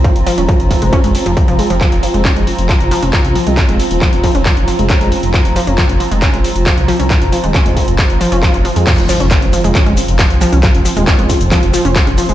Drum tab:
CC |----------------|----------------|----------------|----------------|
HH |xxoxxxoxxxoxxxox|xxoxxxoxxxoxxxox|xxoxxxoxxxoxxxox|xxoxxxoxxxoxxxox|
SH |----------------|----------------|----------------|----------------|
CP |----------------|x---x---x---x---|x---x---x---x---|x---x---x---x---|
SD |----------------|----------------|----------------|----------------|
BD |o---o-o-o---o---|o---o---o---o---|o---o-o-o---o---|o---o---o---o---|

CC |----------------|x---------------|----------------|
HH |xxoxxxoxxxoxxxox|xxoxxxoxxxoxxxox|xxoxxxoxxxoxxxox|
SH |----------------|xxxxx-xxx-xxx-xx|xxxxx-xxx-xxx-xx|
CP |x---x---x---x---|x---x---x---x---|x---x---x---x---|
SD |----------------|----r----r----r-|---r----r----r--|
BD |o---o-o-o---o---|o---o---o---o---|o---o-o-o---o---|